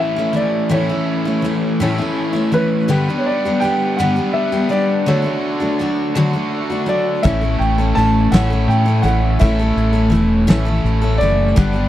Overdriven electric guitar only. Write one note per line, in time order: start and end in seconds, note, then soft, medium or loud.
0.00 0.71 A2 medium
0.00 0.72 E3 medium
0.00 0.72 A3 medium
0.00 0.72 C#4 medium
0.00 0.72 E4 medium
0.00 0.71 A4 medium
0.72 1.79 A2 medium
0.72 1.80 E3 medium
0.72 1.80 A3 medium
0.72 1.80 C#4 medium
0.72 1.80 E4 medium
0.72 1.80 A4 medium
1.82 2.89 A2 medium
1.82 2.89 E3 medium
1.82 2.89 A3 medium
1.82 2.89 C#4 medium
1.82 2.89 E4 medium
1.82 2.89 A4 medium
2.91 3.97 G3 medium
2.91 3.98 B3 medium
2.91 4.01 D4 medium
2.91 3.98 B4 loud
4.00 5.07 G3 medium
4.00 5.06 B3 medium
4.00 5.07 D4 medium
4.00 5.06 B4 medium
5.07 6.14 D3 medium
5.07 6.14 D4 medium
5.07 6.14 F#4 medium
5.07 6.15 A4 medium
6.15 7.23 D3 medium
6.15 7.23 D4 medium
6.15 7.23 F#4 medium
6.15 7.25 A4 medium
7.24 8.34 A2 medium
7.24 8.34 A3 medium
7.24 8.34 C#4 medium
7.24 8.33 E4 medium
7.24 8.32 A4 medium
8.33 9.39 A2 medium
8.33 9.40 A3 medium
8.33 9.39 C#4 medium
8.33 9.39 E4 medium
8.33 9.39 A4 medium
9.40 10.46 A2 medium
9.40 10.47 A3 medium
9.40 10.47 C#4 medium
9.40 10.47 E4 medium
9.40 10.47 A4 medium
10.50 11.56 A2 medium
10.50 11.56 A3 medium
10.50 11.56 C#4 medium
10.50 11.56 E4 medium
10.50 11.55 A4 medium
11.57 11.89 G3 medium
11.57 11.89 B3 medium
11.57 11.89 D4 medium
11.57 11.89 B4 medium